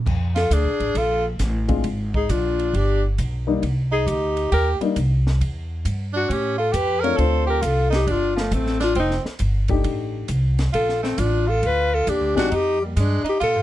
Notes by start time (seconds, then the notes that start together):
0.06 F2, kick, crash
0.35 F4 A4, snare, ride
0.50 D2 D4, kick, hi-hat pedal, ride
0.54 G#4
0.64 A#1
0.80 A1, ride
0.95 A#1 F4 A4, kick, ride
1.39 A1, kick, snare, hi-hat pedal, ride
1.68 G#3 C4 D4 F4, kick, ride
1.84 G#1, kick, ride
2.14 D#4 G#4, kick
2.29 A#1 D4 F4, kick, hi-hat pedal, ride
2.59 ride
2.73 G1 D4 G4, kick, ride
3.18 B1, kick, hi-hat pedal, ride
3.47 G3 A#3 D4 D#4
3.62 C2, kick, ride
3.92 D#4 G#4
4.07 D2 D#4 G4, kick, hi-hat pedal, ride
4.37 ride
4.52 D#2 G4 A#4, kick, ride
4.80 G3 A#3 D4 D#4, muted upright bass stroke, ride
4.96 C2, kick, hi-hat pedal, ride
5.27 snare
5.40 E2, kick, ride
5.85 G2, kick, hi-hat pedal, ride
6.13 D4 F#4
6.29 A2 C#4 G4, kick, ride
6.58 F4 A4
6.72 F2 G4 B4, kick, hi-hat pedal, ride
7.00 A3 C4 D4 F4 A#4 C#5, ride
7.17 D2 A3 C4 D4 F4 A4 C5, kick, ride
7.47 G4 A#4
7.62 C2 F4 A4, kick, hi-hat pedal, ride
7.90 D#4, snare, ride
7.95 G4
8.07 G1 D4, kick, ride
8.11 F4
8.36 F3, snare
8.40 A3
8.51 A1 A3 C4, kick, hi-hat pedal, ride
8.67 snare
8.80 D4 F4, snare, ride
8.95 F1 C4, kick, ride
8.99 D#4
9.11 snare
9.25 muted upright bass stroke, snare
9.39 G1, kick, hi-hat pedal, ride
9.68 A3 D4 D#4 G4, kick, ride
9.84 A1, kick, ride
10.28 C2, kick, hi-hat pedal, ride
10.59 snare, ride
10.73 A#1 F4 A4, kick, ride
10.89 snare
11.03 A3 C4, snare
11.18 A1 D4 F4, kick, hi-hat pedal, ride
11.47 F4 A4
11.63 D2 F4 B4, kick, ride
11.93 F4 A4
12.07 D#2 D4 G4, kick, hi-hat pedal, ride
12.21 D2
12.36 A#1 G#3 C4 D4 D#4 F#4 G4, snare, ride
12.51 F2 D#4, kick, ride
12.55 G4
12.81 G3
12.85 A#3
12.96 G2 G#3 D4, kick, hi-hat pedal, ride
13.24 D#4, muted upright bass stroke, ride
13.29 G4
13.40 A#2 F4 A4, kick, ride
13.55 G#2